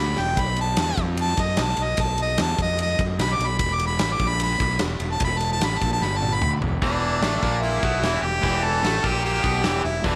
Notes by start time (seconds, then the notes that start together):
Already playing: D2
0.00 B5
0.16 E1, snare
0.21 G5
0.37 B1, kick, ride
0.41 B5
0.56 ride
0.61 A5
0.77 E2, snare, ride
0.82 A5
0.97 F2, kick, ride
1.17 ride
1.21 A5
1.28 snare
1.37 F#2, kick, ride
1.42 D#5
1.57 B1, snare, ride
1.63 A5
1.77 B1, ride
1.83 D#5
1.97 B1, kick, ride
2.03 A5
2.18 ride
2.23 D#5
2.38 E2, snare, ride
2.42 A5
2.58 F2 D#5, kick, ride
2.79 D#5, ride
2.99 F#2, kick, ride
3.19 B1 B5, snare, ride
3.34 D6
3.39 B1, ride
3.47 B5
3.59 E1 B5, kick, ride
3.74 D6
3.79 ride
3.87 B5
3.99 A1 B5, snare, ride
4.14 D6
4.19 A#1, kick, ride
4.28 B5
4.40 B5, ride
4.60 B1, kick, ride
4.70 snare
4.79 E1, snare, ride
5.00 E1, ride
5.12 A5
5.20 E1, kick, ride
5.25 B5
5.38 A5, ride
5.53 A5
5.61 A1, snare, ride
5.66 B5
5.79 A#1 A5, kick, ride
5.93 A5
6.01 G1 B5, snare
6.17 A5
6.22 high tom
6.34 B5
6.41 D2, mid tom
6.61 E1, floor tom
6.82 E1 E2 E3 D4, kick, open hi-hat
7.21 A1 A2 A3, snare, open hi-hat
7.42 A#1 A#2 A#3, kick
7.62 E4, open hi-hat
7.83 B1 B2 B3, kick
8.03 E1 E2 E3, snare, open hi-hat
8.22 E1 E2 G4
8.42 E1 E2 E3, kick, open hi-hat
8.64 A4
8.83 A1 A2 A3, snare, open hi-hat
9.04 A#1 A#2 A#3 G4, kick
9.24 G4, open hi-hat
9.35 snare
9.43 B1 B2 B3, kick
9.63 E1 E2 E3, snare, open hi-hat
9.84 E1 E2 E4
10.04 E1 E2 E3 D4, kick, open hi-hat